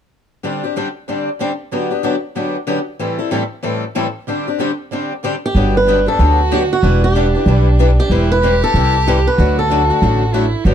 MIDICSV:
0, 0, Header, 1, 6, 480
1, 0, Start_track
1, 0, Key_signature, 1, "major"
1, 0, Tempo, 319319
1, 657, Time_signature, 4, 2, 24, 8
1, 16149, End_track
2, 0, Start_track
2, 0, Title_t, "Steel-string acoustic guitar"
2, 0, Program_c, 0, 25
2, 14125, Note_on_c, 0, 69, 61
2, 14417, Note_off_c, 0, 69, 0
2, 14593, Note_on_c, 0, 69, 77
2, 14751, Note_off_c, 0, 69, 0
2, 15081, Note_on_c, 0, 69, 66
2, 15375, Note_off_c, 0, 69, 0
2, 15569, Note_on_c, 0, 69, 70
2, 15719, Note_off_c, 0, 69, 0
2, 16149, End_track
3, 0, Start_track
3, 0, Title_t, "Steel-string acoustic guitar"
3, 0, Program_c, 1, 25
3, 8201, Note_on_c, 1, 67, 73
3, 8669, Note_off_c, 1, 67, 0
3, 8675, Note_on_c, 1, 71, 75
3, 9136, Note_off_c, 1, 71, 0
3, 9142, Note_on_c, 1, 69, 81
3, 9574, Note_off_c, 1, 69, 0
3, 9821, Note_on_c, 1, 67, 68
3, 9896, Note_off_c, 1, 67, 0
3, 10112, Note_on_c, 1, 66, 75
3, 10539, Note_off_c, 1, 66, 0
3, 10582, Note_on_c, 1, 67, 73
3, 12002, Note_off_c, 1, 67, 0
3, 12020, Note_on_c, 1, 67, 72
3, 12494, Note_off_c, 1, 67, 0
3, 12500, Note_on_c, 1, 71, 85
3, 12977, Note_off_c, 1, 71, 0
3, 12983, Note_on_c, 1, 69, 85
3, 13414, Note_off_c, 1, 69, 0
3, 13643, Note_on_c, 1, 67, 69
3, 13931, Note_off_c, 1, 67, 0
3, 13940, Note_on_c, 1, 71, 73
3, 14373, Note_off_c, 1, 71, 0
3, 14412, Note_on_c, 1, 69, 64
3, 15781, Note_off_c, 1, 69, 0
3, 16149, End_track
4, 0, Start_track
4, 0, Title_t, "Violin"
4, 0, Program_c, 2, 40
4, 8351, Note_on_c, 2, 62, 66
4, 9306, Note_on_c, 2, 66, 85
4, 9329, Note_off_c, 2, 62, 0
4, 10271, Note_on_c, 2, 62, 69
4, 10293, Note_off_c, 2, 66, 0
4, 12196, Note_on_c, 2, 64, 73
4, 12218, Note_off_c, 2, 62, 0
4, 12667, Note_off_c, 2, 64, 0
4, 12674, Note_on_c, 2, 67, 88
4, 14046, Note_off_c, 2, 67, 0
4, 14105, Note_on_c, 2, 66, 71
4, 15528, Note_on_c, 2, 64, 68
4, 15551, Note_off_c, 2, 66, 0
4, 16000, Note_on_c, 2, 66, 81
4, 16022, Note_off_c, 2, 64, 0
4, 16149, Note_off_c, 2, 66, 0
4, 16149, End_track
5, 0, Start_track
5, 0, Title_t, "Steel-string acoustic guitar"
5, 0, Program_c, 3, 25
5, 651, Note_on_c, 3, 50, 54
5, 657, Note_on_c, 3, 55, 50
5, 665, Note_on_c, 3, 60, 58
5, 668, Note_on_c, 3, 62, 58
5, 671, Note_on_c, 3, 67, 60
5, 933, Note_off_c, 3, 50, 0
5, 936, Note_off_c, 3, 55, 0
5, 937, Note_off_c, 3, 67, 0
5, 941, Note_off_c, 3, 60, 0
5, 942, Note_off_c, 3, 62, 0
5, 955, Note_on_c, 3, 67, 47
5, 969, Note_on_c, 3, 62, 43
5, 979, Note_on_c, 3, 60, 38
5, 1133, Note_off_c, 3, 67, 0
5, 1135, Note_off_c, 3, 60, 0
5, 1140, Note_off_c, 3, 62, 0
5, 1146, Note_on_c, 3, 50, 65
5, 1152, Note_on_c, 3, 55, 63
5, 1153, Note_on_c, 3, 60, 60
5, 1160, Note_on_c, 3, 62, 69
5, 1162, Note_on_c, 3, 67, 68
5, 1306, Note_off_c, 3, 50, 0
5, 1309, Note_off_c, 3, 55, 0
5, 1310, Note_off_c, 3, 60, 0
5, 1313, Note_off_c, 3, 62, 0
5, 1314, Note_off_c, 3, 67, 0
5, 1622, Note_on_c, 3, 50, 54
5, 1633, Note_on_c, 3, 55, 51
5, 1639, Note_on_c, 3, 60, 49
5, 1640, Note_on_c, 3, 62, 54
5, 1641, Note_on_c, 3, 67, 54
5, 1924, Note_off_c, 3, 50, 0
5, 1930, Note_off_c, 3, 55, 0
5, 1933, Note_off_c, 3, 60, 0
5, 1933, Note_off_c, 3, 62, 0
5, 1934, Note_off_c, 3, 67, 0
5, 2108, Note_on_c, 3, 50, 70
5, 2113, Note_on_c, 3, 55, 65
5, 2116, Note_on_c, 3, 60, 72
5, 2120, Note_on_c, 3, 62, 71
5, 2123, Note_on_c, 3, 67, 72
5, 2268, Note_off_c, 3, 50, 0
5, 2270, Note_off_c, 3, 55, 0
5, 2271, Note_off_c, 3, 60, 0
5, 2274, Note_off_c, 3, 62, 0
5, 2275, Note_off_c, 3, 67, 0
5, 2584, Note_on_c, 3, 50, 56
5, 2586, Note_on_c, 3, 54, 51
5, 2593, Note_on_c, 3, 59, 61
5, 2596, Note_on_c, 3, 62, 56
5, 2600, Note_on_c, 3, 67, 58
5, 2848, Note_off_c, 3, 67, 0
5, 2860, Note_off_c, 3, 50, 0
5, 2861, Note_off_c, 3, 54, 0
5, 2861, Note_off_c, 3, 62, 0
5, 2865, Note_off_c, 3, 59, 0
5, 2866, Note_on_c, 3, 67, 47
5, 2879, Note_on_c, 3, 62, 43
5, 2890, Note_on_c, 3, 59, 35
5, 3045, Note_off_c, 3, 59, 0
5, 3048, Note_off_c, 3, 67, 0
5, 3050, Note_off_c, 3, 62, 0
5, 3053, Note_on_c, 3, 50, 66
5, 3055, Note_on_c, 3, 54, 71
5, 3063, Note_on_c, 3, 59, 70
5, 3068, Note_on_c, 3, 62, 78
5, 3071, Note_on_c, 3, 67, 72
5, 3220, Note_off_c, 3, 50, 0
5, 3221, Note_off_c, 3, 54, 0
5, 3225, Note_off_c, 3, 59, 0
5, 3228, Note_off_c, 3, 62, 0
5, 3229, Note_off_c, 3, 67, 0
5, 3541, Note_on_c, 3, 50, 51
5, 3543, Note_on_c, 3, 54, 55
5, 3547, Note_on_c, 3, 59, 52
5, 3554, Note_on_c, 3, 62, 59
5, 3554, Note_on_c, 3, 67, 59
5, 3844, Note_off_c, 3, 50, 0
5, 3845, Note_off_c, 3, 54, 0
5, 3847, Note_off_c, 3, 59, 0
5, 3850, Note_off_c, 3, 67, 0
5, 3851, Note_off_c, 3, 62, 0
5, 4009, Note_on_c, 3, 50, 70
5, 4014, Note_on_c, 3, 54, 64
5, 4017, Note_on_c, 3, 59, 72
5, 4020, Note_on_c, 3, 62, 72
5, 4021, Note_on_c, 3, 67, 80
5, 4179, Note_off_c, 3, 50, 0
5, 4181, Note_off_c, 3, 54, 0
5, 4183, Note_off_c, 3, 59, 0
5, 4184, Note_off_c, 3, 62, 0
5, 4184, Note_off_c, 3, 67, 0
5, 4501, Note_on_c, 3, 45, 53
5, 4501, Note_on_c, 3, 52, 59
5, 4504, Note_on_c, 3, 55, 55
5, 4510, Note_on_c, 3, 60, 58
5, 4516, Note_on_c, 3, 64, 64
5, 4518, Note_on_c, 3, 69, 61
5, 4770, Note_off_c, 3, 69, 0
5, 4776, Note_off_c, 3, 64, 0
5, 4779, Note_off_c, 3, 45, 0
5, 4779, Note_off_c, 3, 52, 0
5, 4781, Note_off_c, 3, 55, 0
5, 4784, Note_off_c, 3, 60, 0
5, 4788, Note_on_c, 3, 69, 48
5, 4794, Note_on_c, 3, 64, 51
5, 4803, Note_on_c, 3, 60, 45
5, 4813, Note_on_c, 3, 55, 42
5, 4963, Note_off_c, 3, 55, 0
5, 4969, Note_off_c, 3, 60, 0
5, 4970, Note_off_c, 3, 69, 0
5, 4973, Note_off_c, 3, 64, 0
5, 4976, Note_on_c, 3, 45, 76
5, 4977, Note_on_c, 3, 52, 64
5, 4981, Note_on_c, 3, 55, 70
5, 4987, Note_on_c, 3, 60, 65
5, 4989, Note_on_c, 3, 64, 73
5, 4993, Note_on_c, 3, 69, 73
5, 5142, Note_off_c, 3, 45, 0
5, 5143, Note_off_c, 3, 52, 0
5, 5145, Note_off_c, 3, 55, 0
5, 5148, Note_off_c, 3, 60, 0
5, 5149, Note_off_c, 3, 64, 0
5, 5151, Note_off_c, 3, 69, 0
5, 5450, Note_on_c, 3, 45, 51
5, 5457, Note_on_c, 3, 52, 54
5, 5462, Note_on_c, 3, 55, 53
5, 5462, Note_on_c, 3, 60, 60
5, 5468, Note_on_c, 3, 64, 60
5, 5470, Note_on_c, 3, 69, 67
5, 5759, Note_off_c, 3, 45, 0
5, 5762, Note_off_c, 3, 52, 0
5, 5765, Note_off_c, 3, 55, 0
5, 5765, Note_off_c, 3, 60, 0
5, 5768, Note_off_c, 3, 64, 0
5, 5769, Note_off_c, 3, 69, 0
5, 5940, Note_on_c, 3, 45, 73
5, 5943, Note_on_c, 3, 52, 68
5, 5947, Note_on_c, 3, 55, 76
5, 5948, Note_on_c, 3, 60, 76
5, 5953, Note_on_c, 3, 64, 78
5, 5953, Note_on_c, 3, 69, 81
5, 6104, Note_off_c, 3, 45, 0
5, 6106, Note_off_c, 3, 52, 0
5, 6108, Note_off_c, 3, 55, 0
5, 6109, Note_off_c, 3, 60, 0
5, 6111, Note_off_c, 3, 64, 0
5, 6111, Note_off_c, 3, 69, 0
5, 6430, Note_on_c, 3, 50, 56
5, 6431, Note_on_c, 3, 55, 57
5, 6441, Note_on_c, 3, 60, 56
5, 6444, Note_on_c, 3, 67, 66
5, 6445, Note_on_c, 3, 62, 59
5, 6704, Note_off_c, 3, 50, 0
5, 6705, Note_off_c, 3, 55, 0
5, 6706, Note_off_c, 3, 67, 0
5, 6710, Note_off_c, 3, 60, 0
5, 6711, Note_off_c, 3, 62, 0
5, 6724, Note_on_c, 3, 67, 50
5, 6738, Note_on_c, 3, 62, 49
5, 6748, Note_on_c, 3, 60, 42
5, 6898, Note_off_c, 3, 60, 0
5, 6898, Note_off_c, 3, 67, 0
5, 6905, Note_off_c, 3, 62, 0
5, 6907, Note_on_c, 3, 50, 65
5, 6911, Note_on_c, 3, 55, 69
5, 6916, Note_on_c, 3, 60, 72
5, 6923, Note_on_c, 3, 62, 76
5, 6926, Note_on_c, 3, 67, 79
5, 7068, Note_off_c, 3, 50, 0
5, 7070, Note_off_c, 3, 55, 0
5, 7073, Note_off_c, 3, 60, 0
5, 7076, Note_off_c, 3, 62, 0
5, 7078, Note_off_c, 3, 67, 0
5, 7394, Note_on_c, 3, 50, 50
5, 7401, Note_on_c, 3, 55, 54
5, 7408, Note_on_c, 3, 60, 62
5, 7412, Note_on_c, 3, 62, 64
5, 7413, Note_on_c, 3, 67, 58
5, 7691, Note_off_c, 3, 50, 0
5, 7695, Note_off_c, 3, 55, 0
5, 7698, Note_off_c, 3, 60, 0
5, 7700, Note_off_c, 3, 62, 0
5, 7701, Note_off_c, 3, 67, 0
5, 7872, Note_on_c, 3, 50, 65
5, 7878, Note_on_c, 3, 55, 69
5, 7882, Note_on_c, 3, 60, 78
5, 7884, Note_on_c, 3, 67, 80
5, 7885, Note_on_c, 3, 62, 73
5, 8031, Note_off_c, 3, 50, 0
5, 8034, Note_off_c, 3, 55, 0
5, 8036, Note_off_c, 3, 60, 0
5, 8037, Note_off_c, 3, 67, 0
5, 8038, Note_off_c, 3, 62, 0
5, 8353, Note_on_c, 3, 50, 59
5, 8353, Note_on_c, 3, 54, 54
5, 8359, Note_on_c, 3, 59, 57
5, 8367, Note_on_c, 3, 62, 63
5, 8368, Note_on_c, 3, 67, 59
5, 8651, Note_off_c, 3, 50, 0
5, 8651, Note_off_c, 3, 54, 0
5, 8654, Note_off_c, 3, 59, 0
5, 8658, Note_off_c, 3, 62, 0
5, 8659, Note_off_c, 3, 67, 0
5, 8836, Note_on_c, 3, 50, 67
5, 8842, Note_on_c, 3, 54, 61
5, 8846, Note_on_c, 3, 59, 75
5, 8848, Note_on_c, 3, 67, 73
5, 8850, Note_on_c, 3, 62, 69
5, 8993, Note_off_c, 3, 50, 0
5, 8996, Note_off_c, 3, 54, 0
5, 8998, Note_off_c, 3, 59, 0
5, 8999, Note_off_c, 3, 67, 0
5, 9000, Note_off_c, 3, 62, 0
5, 9114, Note_on_c, 3, 67, 49
5, 9130, Note_on_c, 3, 62, 45
5, 9137, Note_on_c, 3, 59, 41
5, 9293, Note_off_c, 3, 67, 0
5, 9302, Note_off_c, 3, 62, 0
5, 9305, Note_off_c, 3, 59, 0
5, 9314, Note_on_c, 3, 50, 56
5, 9317, Note_on_c, 3, 54, 55
5, 9328, Note_on_c, 3, 59, 55
5, 9328, Note_on_c, 3, 62, 57
5, 9332, Note_on_c, 3, 67, 61
5, 9611, Note_off_c, 3, 50, 0
5, 9613, Note_off_c, 3, 54, 0
5, 9618, Note_off_c, 3, 62, 0
5, 9619, Note_off_c, 3, 59, 0
5, 9620, Note_off_c, 3, 67, 0
5, 9790, Note_on_c, 3, 50, 66
5, 9793, Note_on_c, 3, 54, 73
5, 9797, Note_on_c, 3, 59, 74
5, 9798, Note_on_c, 3, 62, 81
5, 9799, Note_on_c, 3, 67, 81
5, 9950, Note_off_c, 3, 50, 0
5, 9951, Note_off_c, 3, 54, 0
5, 9954, Note_off_c, 3, 59, 0
5, 9954, Note_off_c, 3, 62, 0
5, 9955, Note_off_c, 3, 67, 0
5, 10272, Note_on_c, 3, 52, 62
5, 10277, Note_on_c, 3, 55, 53
5, 10280, Note_on_c, 3, 62, 54
5, 10280, Note_on_c, 3, 64, 56
5, 10286, Note_on_c, 3, 71, 69
5, 10570, Note_off_c, 3, 52, 0
5, 10573, Note_off_c, 3, 55, 0
5, 10574, Note_off_c, 3, 62, 0
5, 10574, Note_off_c, 3, 64, 0
5, 10578, Note_off_c, 3, 71, 0
5, 10752, Note_on_c, 3, 52, 70
5, 10760, Note_on_c, 3, 55, 62
5, 10763, Note_on_c, 3, 62, 74
5, 10763, Note_on_c, 3, 64, 64
5, 10767, Note_on_c, 3, 71, 70
5, 10911, Note_off_c, 3, 52, 0
5, 10915, Note_off_c, 3, 55, 0
5, 10916, Note_off_c, 3, 64, 0
5, 10917, Note_off_c, 3, 62, 0
5, 10918, Note_off_c, 3, 71, 0
5, 11047, Note_on_c, 3, 71, 48
5, 11062, Note_on_c, 3, 64, 46
5, 11072, Note_on_c, 3, 62, 39
5, 11220, Note_off_c, 3, 71, 0
5, 11227, Note_off_c, 3, 62, 0
5, 11227, Note_off_c, 3, 64, 0
5, 11233, Note_on_c, 3, 52, 54
5, 11241, Note_on_c, 3, 55, 58
5, 11245, Note_on_c, 3, 62, 57
5, 11254, Note_on_c, 3, 64, 57
5, 11254, Note_on_c, 3, 71, 61
5, 11531, Note_off_c, 3, 52, 0
5, 11535, Note_off_c, 3, 55, 0
5, 11537, Note_off_c, 3, 62, 0
5, 11541, Note_off_c, 3, 64, 0
5, 11541, Note_off_c, 3, 71, 0
5, 11712, Note_on_c, 3, 52, 73
5, 11719, Note_on_c, 3, 55, 76
5, 11722, Note_on_c, 3, 62, 81
5, 11728, Note_on_c, 3, 64, 77
5, 11730, Note_on_c, 3, 71, 88
5, 11871, Note_off_c, 3, 52, 0
5, 11874, Note_off_c, 3, 55, 0
5, 11876, Note_off_c, 3, 62, 0
5, 11879, Note_off_c, 3, 64, 0
5, 11880, Note_off_c, 3, 71, 0
5, 12191, Note_on_c, 3, 52, 65
5, 12201, Note_on_c, 3, 60, 62
5, 12202, Note_on_c, 3, 55, 59
5, 12202, Note_on_c, 3, 64, 58
5, 12207, Note_on_c, 3, 71, 65
5, 12490, Note_off_c, 3, 52, 0
5, 12495, Note_off_c, 3, 60, 0
5, 12495, Note_off_c, 3, 64, 0
5, 12496, Note_off_c, 3, 55, 0
5, 12498, Note_off_c, 3, 71, 0
5, 12673, Note_on_c, 3, 55, 76
5, 12676, Note_on_c, 3, 52, 68
5, 12686, Note_on_c, 3, 60, 73
5, 12687, Note_on_c, 3, 64, 77
5, 12690, Note_on_c, 3, 71, 72
5, 12831, Note_off_c, 3, 55, 0
5, 12833, Note_off_c, 3, 52, 0
5, 12838, Note_off_c, 3, 60, 0
5, 12838, Note_off_c, 3, 64, 0
5, 12840, Note_off_c, 3, 71, 0
5, 12957, Note_on_c, 3, 71, 52
5, 12972, Note_on_c, 3, 64, 44
5, 12985, Note_on_c, 3, 60, 44
5, 13135, Note_off_c, 3, 71, 0
5, 13143, Note_off_c, 3, 64, 0
5, 13146, Note_off_c, 3, 60, 0
5, 13156, Note_on_c, 3, 52, 54
5, 13160, Note_on_c, 3, 55, 58
5, 13164, Note_on_c, 3, 60, 64
5, 13167, Note_on_c, 3, 71, 63
5, 13168, Note_on_c, 3, 64, 61
5, 13452, Note_off_c, 3, 52, 0
5, 13455, Note_off_c, 3, 55, 0
5, 13456, Note_off_c, 3, 60, 0
5, 13458, Note_off_c, 3, 64, 0
5, 13458, Note_off_c, 3, 71, 0
5, 13639, Note_on_c, 3, 52, 72
5, 13643, Note_on_c, 3, 55, 73
5, 13644, Note_on_c, 3, 60, 73
5, 13653, Note_on_c, 3, 64, 86
5, 13655, Note_on_c, 3, 71, 85
5, 13794, Note_off_c, 3, 52, 0
5, 13796, Note_off_c, 3, 55, 0
5, 13797, Note_off_c, 3, 60, 0
5, 13801, Note_off_c, 3, 64, 0
5, 13802, Note_off_c, 3, 71, 0
5, 14113, Note_on_c, 3, 50, 58
5, 14123, Note_on_c, 3, 54, 61
5, 14126, Note_on_c, 3, 57, 64
5, 14128, Note_on_c, 3, 62, 62
5, 14130, Note_on_c, 3, 66, 67
5, 14411, Note_off_c, 3, 50, 0
5, 14416, Note_off_c, 3, 54, 0
5, 14417, Note_off_c, 3, 57, 0
5, 14418, Note_off_c, 3, 62, 0
5, 14419, Note_off_c, 3, 66, 0
5, 14597, Note_on_c, 3, 50, 69
5, 14601, Note_on_c, 3, 54, 72
5, 14602, Note_on_c, 3, 57, 78
5, 14606, Note_on_c, 3, 62, 68
5, 14612, Note_on_c, 3, 66, 79
5, 14753, Note_off_c, 3, 50, 0
5, 14755, Note_off_c, 3, 54, 0
5, 14756, Note_off_c, 3, 57, 0
5, 14758, Note_off_c, 3, 62, 0
5, 14761, Note_off_c, 3, 66, 0
5, 14882, Note_on_c, 3, 66, 49
5, 14895, Note_on_c, 3, 62, 46
5, 14904, Note_on_c, 3, 57, 43
5, 15057, Note_off_c, 3, 66, 0
5, 15063, Note_off_c, 3, 57, 0
5, 15064, Note_off_c, 3, 62, 0
5, 15070, Note_on_c, 3, 50, 57
5, 15074, Note_on_c, 3, 54, 55
5, 15081, Note_on_c, 3, 57, 54
5, 15084, Note_on_c, 3, 62, 59
5, 15092, Note_on_c, 3, 66, 61
5, 15369, Note_off_c, 3, 50, 0
5, 15371, Note_off_c, 3, 54, 0
5, 15375, Note_off_c, 3, 57, 0
5, 15376, Note_off_c, 3, 62, 0
5, 15380, Note_off_c, 3, 66, 0
5, 15539, Note_on_c, 3, 50, 68
5, 15541, Note_on_c, 3, 54, 75
5, 15546, Note_on_c, 3, 57, 70
5, 15546, Note_on_c, 3, 62, 72
5, 15548, Note_on_c, 3, 66, 83
5, 15704, Note_off_c, 3, 50, 0
5, 15705, Note_off_c, 3, 54, 0
5, 15708, Note_off_c, 3, 57, 0
5, 15708, Note_off_c, 3, 62, 0
5, 15708, Note_off_c, 3, 66, 0
5, 16013, Note_on_c, 3, 50, 54
5, 16022, Note_on_c, 3, 54, 60
5, 16029, Note_on_c, 3, 59, 58
5, 16032, Note_on_c, 3, 62, 63
5, 16034, Note_on_c, 3, 67, 62
5, 16149, Note_off_c, 3, 50, 0
5, 16149, Note_off_c, 3, 54, 0
5, 16149, Note_off_c, 3, 59, 0
5, 16149, Note_off_c, 3, 62, 0
5, 16149, Note_off_c, 3, 67, 0
5, 16149, End_track
6, 0, Start_track
6, 0, Title_t, "Upright bass"
6, 0, Program_c, 4, 32
6, 8338, Note_on_c, 4, 31, 74
6, 9107, Note_off_c, 4, 31, 0
6, 9304, Note_on_c, 4, 38, 70
6, 10070, Note_off_c, 4, 38, 0
6, 10264, Note_on_c, 4, 28, 77
6, 11030, Note_off_c, 4, 28, 0
6, 11213, Note_on_c, 4, 35, 76
6, 11984, Note_off_c, 4, 35, 0
6, 12168, Note_on_c, 4, 28, 73
6, 12941, Note_off_c, 4, 28, 0
6, 13136, Note_on_c, 4, 36, 72
6, 13905, Note_off_c, 4, 36, 0
6, 14105, Note_on_c, 4, 38, 85
6, 14871, Note_off_c, 4, 38, 0
6, 15060, Note_on_c, 4, 33, 72
6, 15828, Note_off_c, 4, 33, 0
6, 16008, Note_on_c, 4, 31, 77
6, 16149, Note_off_c, 4, 31, 0
6, 16149, End_track
0, 0, End_of_file